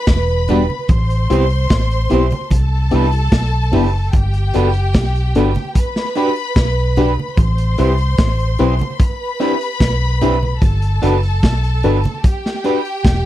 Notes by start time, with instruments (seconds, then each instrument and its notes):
Already playing: string section B4 B5
0.07 fingered electric bass E1, kick, snare, closed hi-hat
0.48 fm electric piano G3 B3 D4 F#4, clean electric guitar D4 G4 B4, closed hi-hat, low conga
0.70 high conga
0.88 fingered electric bass A1, string section C5 C6, kick, closed hi-hat, low conga
1.10 closed hi-hat
1.30 fingered electric bass C2, fm electric piano B3 C4 E4 G4, clean electric guitar E4 G4 C5, closed hi-hat
1.50 closed hi-hat
1.69 fingered electric bass A1, kick, snare, closed hi-hat, high conga
1.91 closed hi-hat
2.10 fingered electric bass B1, fm electric piano B3 C4 E4 G4, clean electric guitar E4 G4 C5, closed hi-hat
2.30 muted clean electric guitar stroke, closed hi-hat, high conga
2.51 fingered electric bass C2, string section A4 A5, kick, closed hi-hat, high conga, low conga
2.91 fingered electric bass C2, fm electric piano B3 D4 E4 G4, clean electric guitar E4 G4 B4, closed hi-hat
3.12 fm electric piano E4 G4, closed hi-hat
3.32 fingered electric bass B1, kick, snare, closed hi-hat
3.72 fingered electric bass F#1, fm electric piano B3 D4 E4 G4, clean electric guitar E4 G4 B4, open hi-hat, high conga, low conga
3.94 muted clean electric guitar stroke
4.13 fingered electric bass G1, string section G4 G5, kick, closed hi-hat, low conga
4.34 closed hi-hat
4.54 fingered electric bass F#1, fm electric piano B3 D4 F#4 A4, clean electric guitar D4 F#4 B4, closed hi-hat
4.74 closed hi-hat
4.93 fingered electric bass B1, kick, snare, closed hi-hat
5.15 closed hi-hat
5.35 fingered electric bass G1, fm electric piano B3 D4 F#4 A4, clean electric guitar D4 F#4 B4, closed hi-hat
5.55 closed hi-hat, high conga
5.75 string section B4 B5, kick, closed hi-hat, low conga
5.96 snare
6.15 clean electric guitar D4 G4 B4, fm electric piano D4 F#4 G4 B4, closed hi-hat
6.36 closed hi-hat
6.56 fingered electric bass B1, kick, snare, closed hi-hat
6.96 clean electric guitar D4 G4 B4, fm electric piano D4 F#4 G4 B4, closed hi-hat, low conga
7.19 high conga
7.37 fingered electric bass A1, string section C5 C6, kick, closed hi-hat, low conga
7.58 closed hi-hat
7.78 fingered electric bass C2, fm electric piano C4 E4 G4 B4, clean electric guitar E4 G4 C5, closed hi-hat
7.98 closed hi-hat
8.17 fingered electric bass A1, kick, snare, closed hi-hat
8.39 closed hi-hat
8.58 fingered electric bass B1, fm electric piano C4 E4 G4 B4, clean electric guitar E4 G4 C5, closed hi-hat
8.79 muted clean electric guitar stroke, closed hi-hat, high conga
9.00 string section B4 B5, kick, closed hi-hat, low conga
9.40 clean electric guitar C4 E4 B4, fm electric piano D4 E4 G4 B4, closed hi-hat
9.61 fm electric piano G4 B4, closed hi-hat
9.80 fingered electric bass B1, kick, snare, closed hi-hat
10.21 clean electric guitar C4 E4 B4, fm electric piano D4 E4 G4 B4, closed hi-hat, low conga
10.43 muted clean electric guitar stroke, high conga
10.61 fingered electric bass G1, string section A4 A5, kick, closed hi-hat, low conga
10.82 closed hi-hat
11.02 fingered electric bass F#1, clean electric guitar D4 F#4 B4, fm electric piano D4 F#4 A4 B4, closed hi-hat
11.23 closed hi-hat
11.43 fingered electric bass B1, kick, snare, closed hi-hat
11.64 closed hi-hat
11.83 fingered electric bass G1, clean electric guitar D4 F#4 B4, fm electric piano D4 F#4 A4 B4, closed hi-hat
12.03 closed hi-hat, high conga
12.24 string section G4 G5, kick, closed hi-hat, low conga
12.46 snare
12.64 clean electric guitar D4 G4 B4, fm electric piano D4 F#4 G4 B4, closed hi-hat
12.85 closed hi-hat
13.05 fingered electric bass E1, kick, snare, closed hi-hat